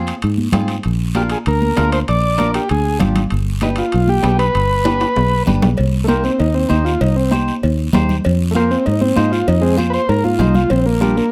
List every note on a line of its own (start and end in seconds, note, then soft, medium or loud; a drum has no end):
0.00 0.11 F2 medium
0.00 0.14 C4 medium
0.00 0.14 F4 medium
0.00 0.14 G#4 medium
0.07 high timbale medium
0.07 short guiro medium
0.22 0.48 G#2 medium
0.22 high timbale medium
0.22 long guiro medium
0.38 high conga medium
0.52 0.78 G#2 medium
0.52 0.75 C4 medium
0.52 0.76 F4 medium
0.52 0.76 G#4 medium
0.52 high conga medium
0.52 low conga medium
0.52 high timbale medium
0.52 low timbale medium
0.52 short guiro medium
0.68 high timbale medium
0.68 short guiro medium
0.83 1.35 A#1 medium
0.83 high timbale medium
0.83 long guiro medium
1.14 1.37 D4 medium
1.14 1.37 F4 medium
1.14 1.23 G4 medium
1.14 1.37 A#4 medium
1.14 high conga medium
1.14 high timbale medium
1.14 short guiro medium
1.30 1.38 G#4 medium
1.30 high timbale medium
1.30 short guiro medium
1.46 1.71 D2 medium
1.46 1.90 A#4 medium
1.46 high timbale medium
1.46 long guiro medium
1.62 high conga medium
1.77 2.02 D2 medium
1.77 1.99 D4 medium
1.77 1.99 F4 medium
1.77 1.99 A#4 medium
1.77 high conga medium
1.77 high timbale medium
1.77 low timbale medium
1.77 short guiro medium
1.92 2.00 C5 medium
1.92 high timbale medium
1.92 short guiro medium
2.08 2.58 A#1 medium
2.08 2.51 D5 loud
2.08 high timbale medium
2.08 long guiro medium
2.38 2.60 D4 medium
2.38 2.60 F4 soft
2.38 2.60 A#4 medium
2.38 high conga medium
2.38 high timbale medium
2.38 short guiro medium
2.54 2.69 G4 medium
2.54 high timbale medium
2.54 short guiro medium
2.69 3.02 D2 medium
2.69 2.99 G#4 medium
2.69 high timbale medium
2.69 long guiro medium
2.99 3.25 G#1 medium
2.99 3.22 D4 medium
2.99 3.22 F4 medium
2.99 3.22 G4 medium
2.99 high conga medium
2.99 low conga medium
2.99 high timbale medium
2.99 short guiro medium
3.16 low conga medium
3.16 high timbale medium
3.16 short guiro medium
3.30 3.81 G1 medium
3.30 high timbale medium
3.30 long guiro medium
3.61 3.84 D4 medium
3.61 3.69 D#4 medium
3.61 3.84 G4 medium
3.61 3.84 B4 medium
3.61 high conga medium
3.61 high timbale medium
3.61 short guiro medium
3.76 4.10 F4 medium
3.76 high timbale medium
3.76 short guiro medium
3.92 4.18 B1 medium
3.92 high timbale medium
3.92 long guiro medium
4.08 4.38 G4 loud
4.08 high conga medium
4.23 4.49 B1 medium
4.23 4.45 D4 medium
4.23 4.45 G4 medium
4.23 4.45 B4 medium
4.23 high conga medium
4.23 high timbale medium
4.23 low timbale medium
4.23 short guiro medium
4.39 5.43 B4 loud
4.39 high timbale medium
4.39 short guiro medium
4.55 5.04 G1 medium
4.55 high timbale medium
4.55 long guiro medium
4.85 5.07 D4 medium
4.85 5.07 G4 medium
4.85 5.07 B4 medium
4.85 high conga medium
4.85 high timbale medium
4.85 short guiro medium
5.00 high timbale medium
5.00 short guiro medium
5.16 5.42 B1 medium
5.16 low timbale medium
5.16 long guiro medium
5.47 5.62 G1 medium
5.47 5.69 D4 medium
5.47 5.69 G4 medium
5.47 5.69 B4 medium
5.47 high conga medium
5.47 low conga medium
5.47 short guiro medium
5.62 5.77 B1 medium
5.62 low conga medium
5.62 low timbale medium
5.62 short guiro medium
5.77 6.28 C2 medium
5.77 cowbell medium
5.77 long guiro medium
6.04 6.07 A3 medium
6.04 6.30 D#4 medium
6.08 6.24 A#3 loud
6.08 6.30 G4 medium
6.08 6.30 C5 medium
6.08 high conga medium
6.08 short guiro medium
6.24 6.39 C4 medium
6.24 short guiro medium
6.40 6.65 D#2 medium
6.40 6.55 D#4 medium
6.40 cowbell medium
6.40 long guiro medium
6.54 6.70 C4 medium
6.69 6.95 D#2 medium
6.69 6.85 D#4 medium
6.69 6.91 D#4 medium
6.69 6.92 G4 medium
6.69 6.92 C5 medium
6.69 high conga medium
6.69 short guiro medium
6.85 7.00 F4 medium
6.85 short guiro medium
7.01 7.51 C2 medium
7.01 7.16 D#4 medium
7.01 cowbell medium
7.01 long guiro medium
7.16 7.31 C4 medium
7.31 7.53 D#4 medium
7.31 7.54 G4 medium
7.31 7.54 C5 medium
7.31 high conga medium
7.31 short guiro medium
7.48 short guiro medium
7.63 7.88 D#2 medium
7.63 cowbell medium
7.63 long guiro medium
7.93 8.19 D#2 medium
7.93 8.15 D#4 medium
7.93 8.16 G4 medium
7.93 8.16 C5 medium
7.93 high conga medium
7.93 low conga medium
7.93 low timbale medium
7.93 short guiro medium
8.09 low conga medium
8.09 short guiro medium
8.24 8.75 F2 medium
8.24 cowbell loud
8.24 long guiro medium
8.51 8.54 A3 medium
8.51 8.77 F4 medium
8.51 short guiro medium
8.56 8.71 A#3 loud
8.56 8.77 G#4 medium
8.56 8.77 C5 medium
8.56 high conga medium
8.71 8.86 C4 medium
8.71 short guiro medium
8.86 9.12 G#2 medium
8.86 9.01 D#4 medium
8.86 cowbell medium
8.86 long guiro medium
9.01 9.16 C4 medium
9.01 high conga medium
9.16 9.42 G#2 medium
9.16 9.32 D#4 medium
9.16 9.38 F4 medium
9.16 9.38 G#4 medium
9.16 9.39 C5 medium
9.16 high conga medium
9.16 short guiro medium
9.32 9.47 F4 medium
9.32 short guiro medium
9.47 9.97 F2 medium
9.47 9.63 D#4 medium
9.47 cowbell loud
9.47 long guiro medium
9.61 9.77 G#3 medium
9.61 9.78 C4 medium
9.77 10.00 F4 medium
9.77 10.00 G#4 medium
9.77 10.00 C5 medium
9.77 high conga medium
9.77 short guiro medium
9.90 9.92 B4 medium
9.90 short guiro medium
9.94 10.09 C5 loud
10.09 10.41 G#2 medium
10.09 10.24 A#4 medium
10.09 cowbell medium
10.09 long guiro medium
10.24 10.39 F4 medium
10.24 high conga medium
10.39 10.64 C2 medium
10.39 10.55 D#4 medium
10.39 10.61 F4 medium
10.39 10.61 G#4 medium
10.39 10.62 C5 medium
10.39 high conga medium
10.39 low conga medium
10.39 low timbale medium
10.39 short guiro medium
10.55 10.70 F4 medium
10.55 low conga medium
10.55 short guiro medium
10.70 11.20 A#1 medium
10.70 10.86 C4 medium
10.70 cowbell medium
10.70 long guiro medium
10.86 11.01 A#3 medium
11.01 11.16 G3 medium
11.01 11.23 D4 medium
11.01 11.23 F4 medium
11.01 11.23 A#4 medium
11.01 high conga medium
11.01 short guiro medium
11.17 11.32 A#3 medium
11.17 short guiro medium